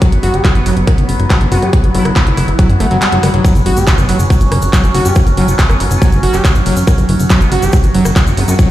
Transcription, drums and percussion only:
0.02 kick, cross-stick, closed hi-hat
0.12 closed hi-hat
0.23 open hi-hat
0.34 closed hi-hat
0.45 kick, cross-stick, clap, closed hi-hat
0.55 closed hi-hat
0.66 open hi-hat
0.77 closed hi-hat
0.87 kick, cross-stick, closed hi-hat
0.98 closed hi-hat
1.09 open hi-hat
1.20 cross-stick, closed hi-hat
1.30 kick, clap, closed hi-hat
1.41 closed hi-hat
1.52 open hi-hat
1.62 cross-stick, closed hi-hat
1.73 kick, closed hi-hat
1.84 closed hi-hat
1.95 open hi-hat
2.05 cross-stick, closed hi-hat
2.16 kick, clap, closed hi-hat
2.27 closed hi-hat
2.37 cross-stick, open hi-hat
2.48 closed hi-hat
2.59 kick, closed hi-hat
2.70 closed hi-hat
2.80 cross-stick, open hi-hat
2.91 closed hi-hat
3.02 clap, closed hi-hat
3.12 closed hi-hat
3.23 cross-stick, open hi-hat
3.34 closed hi-hat
3.45 kick, closed hi-hat, shaker
3.55 closed hi-hat, shaker
3.66 open hi-hat
3.77 closed hi-hat, shaker
3.87 kick, clap, closed hi-hat, shaker
3.98 cross-stick, closed hi-hat, shaker
4.09 open hi-hat
4.19 closed hi-hat, shaker
4.30 kick, closed hi-hat, shaker
4.41 closed hi-hat, shaker
4.52 cross-stick, open hi-hat
4.62 closed hi-hat, shaker
4.73 kick, clap, closed hi-hat, shaker
4.84 closed hi-hat, shaker
4.95 open hi-hat
5.05 closed hi-hat, shaker
5.15 kick, cross-stick, closed hi-hat, shaker
5.27 closed hi-hat, shaker
5.37 open hi-hat
5.48 closed hi-hat, shaker
5.59 kick, clap, closed hi-hat, shaker
5.70 cross-stick, closed hi-hat, shaker
5.80 open hi-hat
5.91 closed hi-hat, shaker
6.02 kick, closed hi-hat, shaker
6.12 closed hi-hat, shaker
6.23 open hi-hat
6.33 cross-stick, clap, closed hi-hat, shaker
6.45 kick, clap, closed hi-hat, shaker
6.55 closed hi-hat, shaker
6.66 open hi-hat
6.76 closed hi-hat, shaker
6.87 kick, cross-stick, closed hi-hat, shaker
6.98 closed hi-hat, shaker
7.09 open hi-hat
7.20 closed hi-hat, shaker
7.30 kick, clap, closed hi-hat, shaker
7.41 closed hi-hat, shaker
7.52 open hi-hat
7.62 closed hi-hat, shaker
7.73 kick, closed hi-hat, shaker
7.83 closed hi-hat, shaker
7.94 open hi-hat
8.05 cross-stick, closed hi-hat, shaker
8.16 kick, clap, closed hi-hat, shaker
8.27 closed hi-hat, shaker
8.37 open hi-hat
8.48 closed hi-hat, shaker
8.59 kick, closed hi-hat, shaker

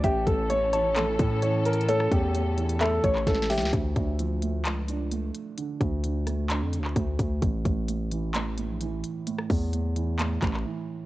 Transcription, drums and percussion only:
0.04 kick, closed hi-hat
0.27 kick, closed hi-hat
0.50 closed hi-hat
0.73 closed hi-hat
0.96 clap, closed hi-hat
1.19 kick, closed hi-hat
1.42 closed hi-hat
1.65 closed hi-hat
1.73 closed hi-hat
1.81 closed hi-hat
1.88 closed hi-hat
2.00 cross-stick
2.11 kick, closed hi-hat
2.35 closed hi-hat
2.58 closed hi-hat
2.69 closed hi-hat
2.81 clap, closed hi-hat
3.04 kick, closed hi-hat
3.15 clap
3.27 kick, snare, closed hi-hat
3.35 snare
3.42 snare
3.50 snare, closed hi-hat, open hi-hat
3.58 snare, closed hi-hat
3.65 snare
3.73 kick, closed hi-hat
3.96 kick, closed hi-hat
4.19 closed hi-hat
4.42 closed hi-hat
4.65 clap, closed hi-hat
4.88 closed hi-hat
5.12 closed hi-hat
5.35 closed hi-hat
5.58 closed hi-hat
5.81 kick, closed hi-hat
6.04 closed hi-hat
6.27 cross-stick, closed hi-hat
6.50 clap, closed hi-hat
6.73 closed hi-hat
6.84 clap
6.96 kick, closed hi-hat
7.19 kick, closed hi-hat
7.42 kick, closed hi-hat
7.65 kick, closed hi-hat
7.88 closed hi-hat
8.11 closed hi-hat
8.35 clap, closed hi-hat
8.58 closed hi-hat
8.81 closed hi-hat
9.04 closed hi-hat
9.27 closed hi-hat
9.38 cross-stick
9.50 kick, open hi-hat
9.73 closed hi-hat
9.96 closed hi-hat
10.19 clap, closed hi-hat
10.42 kick, clap, closed hi-hat
10.54 clap

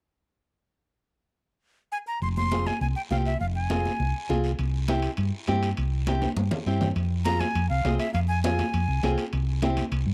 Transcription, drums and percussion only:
2.22 high conga, long guiro
2.37 high conga
2.51 high conga, short guiro
2.67 high conga, short guiro
2.81 high conga, long guiro
3.11 high conga, short guiro
3.26 short guiro
3.41 high conga, long guiro
3.70 high conga, short guiro
3.85 high conga, short guiro
4.00 high conga, long guiro
4.29 high conga, short guiro
4.44 short guiro
4.59 high conga, high timbale, long guiro
4.88 high conga, high timbale, short guiro
5.02 high timbale, short guiro
5.17 high conga, high timbale, long guiro
5.47 high conga, high timbale, short guiro
5.63 high timbale, short guiro
5.77 high conga, high timbale, long guiro
6.07 high conga, high timbale, short guiro
6.22 high conga, high timbale, short guiro
6.37 high conga, long guiro
6.51 low conga, low timbale
6.66 short guiro
6.81 low conga, low timbale, short guiro
6.96 high conga, high timbale, long guiro
7.25 high conga, high timbale, short guiro
7.40 high conga, high timbale, short guiro
7.55 high conga, high timbale, long guiro
7.85 high conga, high timbale, low timbale, short guiro
8.00 high timbale, short guiro
8.14 high conga, high timbale, long guiro
8.44 high conga, high timbale, short guiro
8.59 high conga, high timbale, short guiro
8.73 high conga, high timbale, long guiro
9.03 high conga, high timbale, low timbale, short guiro
9.18 high timbale, short guiro
9.33 high conga, high timbale, long guiro
9.62 high conga, high timbale, short guiro
9.77 high conga, high timbale, short guiro
9.92 high conga, high timbale, long guiro

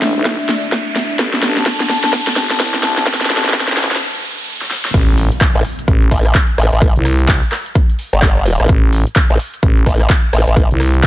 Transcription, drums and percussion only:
0.02 snare, open hi-hat
0.16 closed hi-hat
0.25 kick, snare, closed hi-hat
0.40 closed hi-hat
0.49 snare, open hi-hat
0.63 closed hi-hat
0.72 kick, snare, closed hi-hat
0.96 snare, open hi-hat
1.10 closed hi-hat
1.19 kick, snare, closed hi-hat
1.33 snare
1.43 snare, open hi-hat
1.57 snare, closed hi-hat
1.66 kick, snare, closed hi-hat
1.80 snare
1.90 snare, open hi-hat
2.04 snare, closed hi-hat
2.13 kick, snare, closed hi-hat
2.27 snare, closed hi-hat
2.36 kick, snare, open hi-hat
2.51 snare, closed hi-hat
2.60 kick, snare, closed hi-hat
2.74 snare
2.83 snare, open hi-hat
2.97 snare, closed hi-hat
3.07 kick, snare, closed hi-hat
3.14 snare
3.21 snare, closed hi-hat
3.25 snare
3.30 snare, open hi-hat
3.37 snare
3.44 snare, closed hi-hat
3.49 snare
3.53 kick, snare, closed hi-hat
3.61 snare
3.68 snare, closed hi-hat
3.72 snare
3.77 snare, open hi-hat
3.84 snare
3.91 snare, closed hi-hat
3.96 snare
4.62 snare
4.71 snare
4.85 snare
4.94 kick, closed hi-hat, crash
5.18 open hi-hat
5.32 closed hi-hat
5.41 kick, clap, closed hi-hat
5.55 closed hi-hat
5.65 open hi-hat
5.79 closed hi-hat
5.88 kick, closed hi-hat
6.02 closed hi-hat
6.11 kick, open hi-hat
6.26 cross-stick, closed hi-hat
6.35 kick, clap, closed hi-hat
6.58 cross-stick, open hi-hat
6.73 closed hi-hat
6.82 kick, closed hi-hat
6.96 closed hi-hat
7.05 cross-stick, open hi-hat
7.19 closed hi-hat
7.28 kick, clap, closed hi-hat
7.43 closed hi-hat
7.52 cross-stick, clap, open hi-hat
7.66 closed hi-hat
7.75 kick, closed hi-hat
7.90 closed hi-hat
7.99 open hi-hat
8.13 closed hi-hat
8.22 kick, clap, closed hi-hat
8.46 open hi-hat
8.60 cross-stick, closed hi-hat
8.69 kick, closed hi-hat
8.93 open hi-hat
9.07 closed hi-hat
9.16 kick, clap, closed hi-hat
9.30 closed hi-hat
9.39 open hi-hat
9.54 closed hi-hat
9.63 kick, closed hi-hat
9.77 closed hi-hat
9.86 kick, open hi-hat
10.01 cross-stick, closed hi-hat
10.10 kick, clap, closed hi-hat
10.33 cross-stick, open hi-hat
10.47 closed hi-hat
10.57 kick, closed hi-hat
10.71 closed hi-hat
10.80 cross-stick, open hi-hat
10.94 closed hi-hat
11.03 kick, clap, closed hi-hat

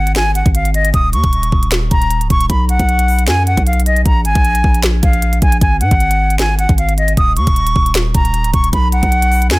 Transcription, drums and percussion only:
0.07 closed hi-hat
0.15 finger snap, snare, closed hi-hat
0.35 closed hi-hat
0.46 kick, closed hi-hat
0.55 closed hi-hat
0.65 closed hi-hat
0.74 closed hi-hat
0.85 closed hi-hat
0.94 kick, closed hi-hat
1.13 closed hi-hat
1.24 kick, closed hi-hat
1.33 closed hi-hat
1.43 closed hi-hat
1.52 kick
1.63 closed hi-hat
1.71 finger snap, snare, closed hi-hat
1.91 kick, closed hi-hat
2.02 closed hi-hat
2.11 closed hi-hat
2.21 closed hi-hat
2.30 kick, closed hi-hat
2.41 closed hi-hat
2.50 kick, closed hi-hat
2.69 closed hi-hat
2.79 kick, closed hi-hat
2.89 closed hi-hat
2.99 closed hi-hat
3.08 open hi-hat
3.19 closed hi-hat
3.27 finger snap, snare, closed hi-hat
3.47 closed hi-hat
3.57 kick, closed hi-hat
3.67 closed hi-hat
3.73 closed hi-hat
3.80 closed hi-hat
3.86 closed hi-hat
3.96 closed hi-hat
4.06 kick, closed hi-hat
4.25 closed hi-hat
4.35 kick, closed hi-hat
4.45 closed hi-hat
4.55 closed hi-hat
4.64 kick
4.74 closed hi-hat
4.83 finger snap, snare, closed hi-hat
5.03 kick, closed hi-hat
5.13 closed hi-hat
5.22 closed hi-hat
5.33 closed hi-hat
5.42 kick, closed hi-hat
5.52 closed hi-hat
5.61 kick, closed hi-hat
5.81 closed hi-hat
5.91 kick, closed hi-hat
6.00 closed hi-hat
6.11 closed hi-hat
6.30 closed hi-hat
6.38 finger snap, snare, closed hi-hat
6.59 closed hi-hat
6.69 kick, closed hi-hat
6.78 closed hi-hat
6.89 closed hi-hat
6.98 closed hi-hat
7.08 closed hi-hat
7.17 kick, closed hi-hat
7.37 closed hi-hat
7.47 kick, closed hi-hat
7.56 closed hi-hat
7.67 closed hi-hat
7.76 kick
7.86 closed hi-hat
7.94 finger snap, snare, closed hi-hat
8.14 kick, closed hi-hat
8.25 closed hi-hat
8.34 closed hi-hat
8.44 closed hi-hat
8.54 kick, closed hi-hat
8.64 closed hi-hat
8.73 kick, closed hi-hat
8.92 closed hi-hat
9.03 kick, closed hi-hat
9.12 closed hi-hat
9.22 closed hi-hat
9.32 open hi-hat
9.42 closed hi-hat
9.50 finger snap, snare, closed hi-hat

